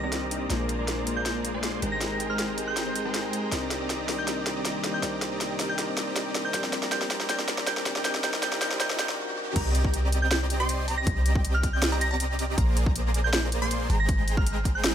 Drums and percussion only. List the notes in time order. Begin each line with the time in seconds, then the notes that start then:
0.12 snare, closed hi-hat
0.31 closed hi-hat
0.50 snare, closed hi-hat
0.69 closed hi-hat
0.88 snare, closed hi-hat
1.07 closed hi-hat
1.26 snare, closed hi-hat
1.45 closed hi-hat
1.63 snare, closed hi-hat
1.82 closed hi-hat
2.01 snare, closed hi-hat
2.20 closed hi-hat
2.39 snare, closed hi-hat
2.58 closed hi-hat
2.77 snare, closed hi-hat
2.96 closed hi-hat
3.14 snare, closed hi-hat
3.33 closed hi-hat
3.52 snare, closed hi-hat
3.71 snare, closed hi-hat
3.90 snare, closed hi-hat
4.09 snare, open hi-hat
4.28 snare, closed hi-hat
4.46 snare, closed hi-hat
4.65 snare, closed hi-hat
4.84 snare, closed hi-hat
5.03 snare, closed hi-hat
5.22 snare, closed hi-hat
5.41 snare, closed hi-hat
5.60 snare, open hi-hat
5.79 snare, closed hi-hat
5.97 snare, closed hi-hat
6.16 snare, closed hi-hat
6.35 snare, closed hi-hat
6.54 snare, closed hi-hat
6.64 snare
6.73 snare, closed hi-hat
6.83 snare
6.92 snare, closed hi-hat
7.01 snare
7.11 snare, open hi-hat
7.20 snare
7.29 snare, closed hi-hat
7.39 snare
7.48 snare, closed hi-hat
7.58 snare
7.67 snare, closed hi-hat
7.77 snare
7.86 snare, closed hi-hat
7.96 snare
8.05 snare, closed hi-hat
8.15 snare
8.24 snare, closed hi-hat
8.34 snare
8.43 snare, closed hi-hat
8.52 snare
8.62 snare, open hi-hat
8.71 snare
8.80 snare, closed hi-hat
8.90 snare
8.99 snare, closed hi-hat
9.09 snare
9.56 kick, closed hi-hat, crash
9.75 closed hi-hat
9.85 kick
9.94 closed hi-hat
10.12 closed hi-hat
10.31 snare, closed hi-hat
10.50 closed hi-hat
10.69 closed hi-hat
10.88 open hi-hat
11.07 kick, closed hi-hat
11.26 closed hi-hat
11.35 kick
11.45 closed hi-hat
11.63 kick, closed hi-hat
11.82 snare, closed hi-hat
12.01 closed hi-hat
12.20 closed hi-hat
12.39 open hi-hat
12.58 kick, closed hi-hat
12.77 closed hi-hat
12.86 kick
12.96 closed hi-hat
13.14 closed hi-hat
13.33 snare, closed hi-hat
13.52 closed hi-hat
13.71 closed hi-hat
13.90 open hi-hat
14.09 kick, closed hi-hat
14.28 closed hi-hat
14.37 kick
14.46 closed hi-hat
14.65 kick, closed hi-hat
14.84 snare, closed hi-hat